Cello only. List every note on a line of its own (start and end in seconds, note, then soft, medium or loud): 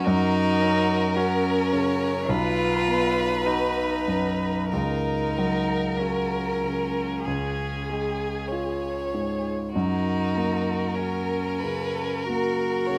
0.05 1.17 D#4 medium
1.16 2.28 C#4 medium
2.27 3.48 F4 medium
3.46 4.72 D#4 medium
4.73 6.01 D#4 medium
6.00 9.12 C#4 medium
9.76 10.97 D#4 medium
10.95 12.26 C#4 medium
12.28 12.98 F#4 medium